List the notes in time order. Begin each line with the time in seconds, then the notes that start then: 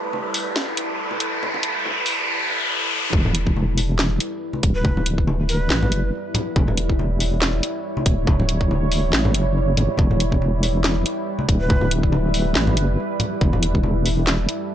Already playing: G3 E4 A4 B4, riser
0.13 high conga
0.34 open hi-hat
0.56 snare
0.77 closed hi-hat
1.11 high conga
1.20 closed hi-hat
1.43 high conga
1.54 low conga
1.63 closed hi-hat
1.85 high conga
2.06 open hi-hat
3.13 E1 G3 E4 B4, kick, high conga
3.25 low conga
3.35 closed hi-hat
3.47 kick
3.57 high conga
3.78 open hi-hat
3.99 snare, clap
4.20 closed hi-hat
4.53 high conga
4.63 D1, kick, closed hi-hat
4.75 B4
4.85 kick, high conga
4.97 low conga
5.06 closed hi-hat
5.18 kick
5.28 high conga
5.49 B4, open hi-hat
5.70 A1, snare, clap
5.83 low conga
5.92 F#1, closed hi-hat
6.34 closed hi-hat, low conga
6.56 E1 C#5, kick, high conga
6.68 low conga
6.77 closed hi-hat
6.89 kick
6.99 high conga
7.20 open hi-hat
7.42 snare, clap
7.63 closed hi-hat
7.97 high conga
8.06 D1, kick, closed hi-hat
8.27 kick, high conga
8.40 low conga
8.49 closed hi-hat
8.61 kick
8.71 high conga
8.92 open hi-hat
9.13 A1, snare, clap
9.25 low conga
9.34 F#1, closed hi-hat
9.77 G1, closed hi-hat, low conga
9.97 E1 B4, kick, high conga
10.11 low conga
10.20 closed hi-hat
10.32 kick
10.42 high conga
10.63 open hi-hat
10.84 snare, clap
11.06 closed hi-hat
11.39 high conga
11.49 D1, kick, closed hi-hat
11.60 B4
11.70 kick, high conga
11.81 low conga
11.91 closed hi-hat
12.03 kick
12.12 high conga
12.34 open hi-hat
12.55 A1, snare, clap
12.67 low conga
12.77 F#1, closed hi-hat
13.20 closed hi-hat, low conga
13.41 E1 A4, kick, high conga
13.53 low conga
13.63 closed hi-hat
13.75 kick
13.83 high conga
14.06 open hi-hat
14.27 snare, clap
14.49 closed hi-hat